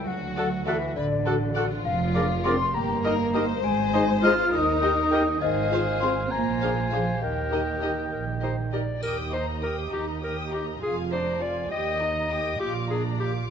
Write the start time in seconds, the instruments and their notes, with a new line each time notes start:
0.07 double bass section D2, cello section F#3, violin section F#4, celesta F#5, flute F#5
0.36 viola section F#4 A4, french horn section F#4 A4, violin section A4 D5, clarinet A4, oboe F#5
0.66 cello section E3, french horn section F#4 A4, viola section F#4 A4, violin section A4 D5, clarinet A4, celesta E5, flute E5, oboe F#5
0.95 double bass section A1, cello section D3, violin section B4, flute D5, celesta D5
1.25 french horn section F#4 A4, viola section F#4 A4, violin section A4 D5, clarinet A4, oboe F#5
1.55 violin section F4 A4 D5, viola section F#4 A4, french horn section F#4 A4, clarinet A4, oboe F#5
1.84 double bass section F1, cello section F3, celesta F5, flute F5
2.14 french horn section D4 A#4, viola section F4 G#4, violin section A#4 D5, clarinet A#4, oboe D5
2.44 cello section C4, french horn section D4 A#4, viola section F4 G#4, violin section A#4 D5, clarinet A#4, oboe D5, flute C6, celesta C6
2.73 double bass section G1, cello section A#3, violin section G4, flute A#5, celesta A#5
3.03 french horn section D#4 A#4, viola section D#4 G4, violin section A#4 D#5, clarinet A#4, oboe D#5
3.33 viola section D#4 G4, french horn section D#4 A#4, violin section A#4 C5 D#5, clarinet A#4, oboe D#5
3.62 double bass section G#1, cello section G#3, flute G#5, celesta G#5
3.93 viola section D#4 G#4, french horn section D#4 C5, violin section C5 D#5, clarinet C5, oboe D#5
4.22 french horn section D#4 C5, viola section D#4 G#4, cello section F4, violin section C5 D#5, clarinet C5, oboe D#5, flute F6, celesta F6
4.52 double bass section D#2, cello section D#4, violin section A#4, flute D#6, celesta D#6
4.82 french horn section G4 A#4, viola section G4, violin section A#4 D#5, clarinet A#4, oboe G5
5.11 french horn section G4 A#4, viola section G4, clarinet A#4, violin section A#4 D#5, oboe G5
5.41 double bass section G#1, cello section D#3, violin section G#4, clarinet C5, celesta D#5, flute D#5, oboe F5
5.70 french horn section F4 C5, viola section F4 G#4, violin section C5 F5
6.00 cello section C4, french horn section F4 C5, viola section F4 G#4, violin section C5 F5, celesta C6, flute C6
6.25 cello section C4
6.30 double bass section A#1, cello section A#3, violin section F4, clarinet C5, oboe G#5, flute A#5, celesta A#5
6.61 viola section D4 G#4, french horn section G#4 C5, violin section C5 F5
6.90 cello section F3, viola section D4 G#4, french horn section G#4 C5, violin section C5 F5, flute F5, celesta F5
7.21 double bass section D#2, cello section D#3, violin section G4, clarinet A#4, flute D#5, celesta D#5, oboe G5
7.50 viola section D#4 G4, french horn section G4 A#4, violin section A#4 D#5
7.81 viola section D#4 G4, french horn section G4 A#4, violin section A#4 D#5
8.12 double bass section A#1, clarinet A#4
8.41 viola section D#4 G4, french horn section G4 A#4, violin section A#4 D#5, clarinet C5
8.72 viola section D#4 G4, french horn section G4 A#4, violin section A#4 D#5, clarinet D5
9.01 double bass section D#2, cello section D#2, viola section G4, clarinet A#4, violin section G5 D#6, triangle
9.32 viola section D#4, clarinet C5, violin section D#5 A#5
9.62 viola section G4, clarinet A#4, violin section G5 D#6
9.92 double bass section D#2, cello section D#2, viola section D#4, clarinet G4, violin section D#5 A#5
10.22 viola section G4, clarinet A#4, violin section G5 D#6
10.52 viola section D#4, clarinet G4, violin section D#5 A#5
10.82 double bass section F1, cello section F2, viola section F4, clarinet G#4, violin section F5 G#5
11.11 viola section D4, clarinet C5, violin section D5 A#5
11.41 viola section F4, clarinet D5, violin section F5 G#5
11.71 double bass section D#2, cello section D#2, viola section G4, clarinet D#5, violin section G5 D#6
12.01 viola section D#4, violin section D#5 A#5
12.30 viola section G4, violin section G5 D#6
12.60 double bass section A#1, cello section A#2, viola section F4, clarinet G4, violin section F5 D6
12.90 viola section D4, clarinet G#4, violin section D5 A#5
13.20 viola section F4, clarinet G4, violin section F5 D6